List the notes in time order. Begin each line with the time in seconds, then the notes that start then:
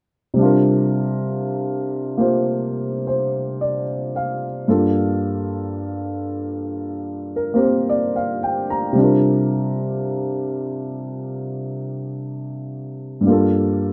0.34 C3 G3
0.39 D4 F4
0.45 A#4
2.17 A#3 F4 G4 C5
3.07 C5
3.61 D5
4.16 F5
4.68 G2 G3 A#3 F4 A4
7.36 A#4
7.54 A#3 C4 G4 A#4
7.62 C5
7.89 D5
8.16 F5
8.43 G5
8.70 A#5
8.93 C3 G3
8.98 D4 F4
9.03 A#4
13.21 G2 G3
13.27 A#3 F4
13.32 A4